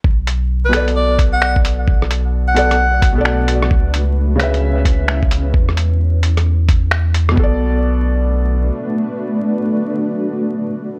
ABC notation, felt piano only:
X:1
M:4/4
L:1/16
Q:"Swing 16ths" 1/4=131
K:Bdor
V:1 name="Felt piano"
z6 [B,,B,Ad]8- [B,,B,Ad]2- | [B,,B,Ad]6 [B,,B,Ad] z4 [B,,B,Ad]4- [B,,B,Ad] | z6 [C,CBe]8- [C,CBe]2 | z16 |
[B,,B,Ad]16- | [B,,B,Ad]16 |]